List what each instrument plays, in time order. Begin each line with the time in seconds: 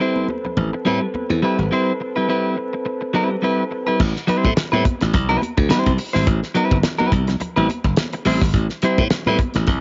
Already playing: tonewheel organ C4 A4 B4
0.00 clean electric guitar G3 C4 E4 C5, muted conga
0.16 high conga
0.28 muted clean electric guitar stroke, muted conga, high conga
0.45 muted clean electric guitar stroke, low conga
0.57 slap bass A1, muted clean electric guitar stroke, low conga
0.73 muted clean electric guitar stroke
0.85 slap bass A2, clean electric guitar G3 C4 E4 B4, high conga
1.01 muted clean electric guitar stroke
1.14 muted slap bass stroke, muted clean electric guitar stroke, high conga
1.30 slap bass E2, muted clean electric guitar stroke
1.42 clean electric guitar G3 C4 E4 B4
1.59 slap bass G#1, muted clean electric guitar stroke
1.71 clean electric guitar G3 C4 E4 C5
2.00 muted clean electric guitar stroke
2.16 clean electric guitar G3 C4 E4 B4
2.29 clean electric guitar G3 C4 E4 B4
2.57 muted clean electric guitar stroke
2.73 muted clean electric guitar stroke
2.85 muted clean electric guitar stroke
3.01 muted clean electric guitar stroke
3.14 clean electric guitar G3 C4 E4 B4
3.30 muted clean electric guitar stroke
3.42 clean electric guitar G3 C4 E4 B4
3.71 muted clean electric guitar stroke
3.87 clean electric guitar G3 C4 E4 B4
4.00 slap bass A1, kick, crash
4.16 snare
4.27 clean electric guitar G3 C4 E4 C5, muted slap bass stroke, closed hi-hat, muted conga
4.44 slap bass A2, kick, high conga
4.56 muted clean electric guitar stroke, muted slap bass stroke, snare, closed hi-hat, muted conga
4.72 slap bass A2, clean electric guitar G3 C4 E4 B4, high conga
4.85 muted clean electric guitar stroke, kick, closed hi-hat, muted conga, high conga
5.01 slap bass A1, muted clean electric guitar stroke, snare, closed hi-hat, low conga
5.14 slap bass C2, muted clean electric guitar stroke, kick, closed hi-hat, low conga
5.29 clean electric guitar G3 C4 E4 B4
5.42 muted clean electric guitar stroke, closed hi-hat, muted conga, high conga
5.57 slap bass D2, muted clean electric guitar stroke, kick
5.69 clean electric guitar G3 C4 E4 C5, muted slap bass stroke, snare, closed hi-hat, high conga
5.86 slap bass C2, kick, closed hi-hat
5.98 muted clean electric guitar stroke, open hi-hat
6.13 slap bass G#1, clean electric guitar G3 C4 E4 C5, snare
6.27 slap bass A1, kick, closed hi-hat, muted conga
6.43 snare
6.55 clean electric guitar G3 C4 E4 B4, closed hi-hat
6.71 slap bass G1, kick, high conga
6.83 muted clean electric guitar stroke, snare, closed hi-hat, muted conga
6.99 clean electric guitar G3 C4 E4 B4, high conga
7.12 slap bass C2, kick, closed hi-hat, high conga
7.27 muted clean electric guitar stroke, snare, closed hi-hat, low conga
7.40 muted clean electric guitar stroke, muted slap bass stroke, closed hi-hat, low conga
7.56 slap bass A1, clean electric guitar G3 C4 E4 B4
7.69 muted clean electric guitar stroke, closed hi-hat, high conga
7.84 slap bass G1, muted clean electric guitar stroke, kick
7.96 snare, closed hi-hat, high conga
8.13 muted clean electric guitar stroke, closed hi-hat
8.25 slap bass A1, clean electric guitar G3 C4 E4 C5, open hi-hat, muted conga
8.41 slap bass G#1, muted clean electric guitar stroke, kick, snare
8.53 slap bass A1, kick, closed hi-hat
8.69 snare
8.82 clean electric guitar G3 C4 E4 C5, muted slap bass stroke, closed hi-hat
8.98 slap bass A2, kick, high conga
9.10 muted slap bass stroke, muted clean electric guitar stroke, snare, closed hi-hat
9.26 slap bass A2, clean electric guitar G3 C4 E4 B4, high conga
9.38 muted clean electric guitar stroke, kick, closed hi-hat, muted conga, high conga
9.54 slap bass A1, muted clean electric guitar stroke, snare, closed hi-hat, low conga
9.67 slap bass C2, muted clean electric guitar stroke, kick, closed hi-hat, muted conga, low conga